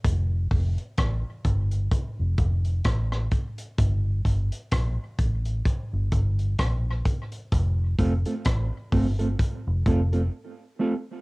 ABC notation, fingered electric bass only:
X:1
M:4/4
L:1/16
Q:"Swing 16ths" 1/4=64
K:Fmix
V:1 name="Fingered electric bass" clef=bass
F,,,2 F,,, z A,,, z G,,,2 z F,,, F,,,2 A,,,2 z2 | G,,,2 G,,, z B,,, z A,,,2 z G,,, G,,,2 B,,,2 z2 | F,,,2 F,,, z A,,, z G,,,2 z F,,, F,,,2 z4 |]